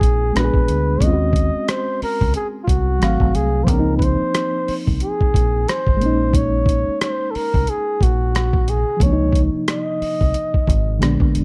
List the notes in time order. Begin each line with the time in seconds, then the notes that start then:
Already playing: A#3 C4 D#4 F4 G#4
0.01 A#1, kick, closed hi-hat
0.33 A#1 G#3 B3 D4 B4, cross-stick, closed hi-hat
0.38 F#4
0.44 G#4
0.54 A#1, kick
0.68 D2, closed hi-hat
0.98 D#2 G#3 C4, kick
1.02 C#4 D#5, closed hi-hat
1.07 F4
1.13 F#4
1.33 kick, closed hi-hat
1.55 muted fingered electric bass stroke
1.68 C5, cross-stick, closed hi-hat
2.02 A#4, muted fingered electric bass stroke, open hi-hat
2.21 C#2, kick
2.34 G#4, closed hi-hat
2.64 F4, kick
2.68 C2 F#4, closed hi-hat
2.99 G#1 F#3 A3 C4, cross-stick, closed hi-hat
3.04 F5
3.20 G#1, kick
3.35 C2 G#4, closed hi-hat
3.64 C#2 F3 A#3 C5, kick
3.68 C4 A#4, closed hi-hat
3.73 D4
3.79 D#4
3.98 B4, kick
4.02 C5, closed hi-hat
4.21 muted fingered electric bass stroke
4.34 cross-stick, closed hi-hat
4.68 muted fingered electric bass stroke, open hi-hat
4.87 C2, kick
5.00 G#4, closed hi-hat
5.21 kick
5.34 A#1, kick, closed hi-hat
5.68 C5, cross-stick, closed hi-hat
5.87 G#1, kick
5.97 G#3 A#3
6.01 A#1 C#4, closed hi-hat
6.06 D#4
6.33 C#5, kick, closed hi-hat
6.66 kick, closed hi-hat
6.88 muted fingered electric bass stroke
7.01 C5, cross-stick, closed hi-hat
7.31 A4
7.35 A#4, muted fingered electric bass stroke, open hi-hat
7.54 C2, kick
7.67 G#4, closed hi-hat
8.01 A#1 F#4, kick, closed hi-hat
8.35 cross-stick, closed hi-hat
8.53 kick
8.68 G#4, closed hi-hat
8.97 C#2 F3 A#3, kick
9.01 C3 C#5, closed hi-hat
9.06 D4
9.13 D#4
9.32 kick, closed hi-hat
9.55 muted fingered electric bass stroke
9.68 D#5, cross-stick, closed hi-hat
10.02 muted fingered electric bass stroke, open hi-hat
10.21 C2, kick
10.34 closed hi-hat
10.54 kick
10.67 G#1, kick, closed hi-hat
10.99 A#1 D3 G#3 B3, cross-stick, closed hi-hat
11.04 D4
11.20 A#1, kick
11.35 E1, closed hi-hat